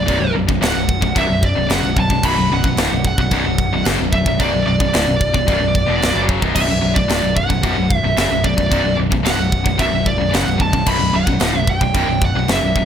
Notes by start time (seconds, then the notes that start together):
Already playing: D5
0.06 B0 B1 F#2, kick, china
0.20 B0 B1 F#2
0.34 B0 B1 F#2
0.48 B0 B1 F#2, kick
0.61 D1 D2 A2 F#5, snare, china
0.75 B0 B1 F#2
0.89 kick
1.01 B0 B1 F#2, kick
1.15 B0 B1 F#2 E5, kick, china
1.28 B0 B1 F#2
1.43 D5, kick
1.56 B0 B1 F#2
1.69 F#1 F#2 C#3 F#5, snare, china
1.83 B0 B1 F#2
1.96 B0 B1 F#2 A5, kick
2.10 B0 B1 F#2, kick
2.23 B0 B1 F#2 B5, kick, china, crash
2.38 B0 B1 F#2
2.51 B0 B1 F#2 F#5
2.64 B0 B1 F#2, kick
2.77 D1 D2 A2, snare, china
2.92 B0 B1 F#2
3.05 F#5, kick
3.18 B0 B1 F#2, kick
3.31 B0 B1 F#2, kick, china
3.46 B0 B1 F#2
3.58 kick
3.73 B0 B1 F#2
3.85 F#1 F#2 C#3, snare, china
4.00 B0 B1 F#2
4.12 B0 B1 F#2 E5, kick
4.26 B0 B1 F#2, kick
4.40 B0 B1 F#2 D5, kick, china
4.54 B0 B1 F#2
4.67 B0 B1 F#2 D5
4.80 B0 B1 F#2, kick
4.93 D1 D2 A2, snare, china
5.07 B0 B1 F#2
5.21 kick
5.33 B0 B1 F#2, kick
5.47 B0 B1 F#2, kick, china
5.60 B0 B1 F#2
5.75 kick
5.86 E1 E2 B2
6.00 B0 B1 F#2, snare, china
6.13 F#1 F#2 C#3 F#3
6.29 kick
6.41 B0 B1 F#2, kick
6.53 B0 B1 F#2 E5, kick, crash, china
6.68 B0 B1 F#2
6.81 B0 B1 F#2
6.95 B0 B1 F#2 D5, kick
7.08 D1 D2 A2, snare, china
7.23 B0 B1 F#2
7.36 F#5, kick
7.48 B0 B1 F#2, kick
7.62 B0 B1 F#2, kick, china
7.77 B0 B1 F#2
7.90 kick
7.96 E5
8.04 B0 B1 F#2
8.16 F#1 F#2 C#3 E5, snare, china
8.30 B0 B1 F#2
8.44 B0 B1 F#2 D5, kick
8.57 B0 B1 F#2, kick
8.71 B0 B1 F#2, kick, china
8.84 B0 B1 F#2
8.97 B0 B1 F#2
9.10 B0 B1 F#2, kick
9.23 D1 D2 A2 F#5, snare, china
9.37 B0 B1 F#2
9.52 kick
9.64 B0 B1 F#2, kick
9.78 B0 B1 F#2 E5, kick, china
9.90 B0 B1 F#2
10.06 D5, kick
10.18 B0 B1 F#2
10.30 F#1 F#2 C#3 F#5, china
10.35 snare
10.46 B0 B1 F#2
10.57 B0 B1 F#2, kick
10.62 A5
10.72 B0 B1 F#2, kick
10.86 B0 B1 F#2 B5, kick, crash, china
10.98 B0 B1 F#2
11.13 B0 B1 F#2 F#5
11.26 B0 B1 F#2, kick
11.40 D1 D2 A2, snare, china
11.53 B0 B1 F#2
11.59 E5
11.67 G5, kick
11.81 B0 B1 F#2, kick
11.94 B0 B1 F#2, kick, china
12.07 B0 B1 F#2
12.22 F#5, kick
12.34 B0 B1 F#2
12.48 F#1 F#2 C#3, snare, china
12.52 E5
12.62 B0 B1 F#2
12.76 B0 B1 F#2, kick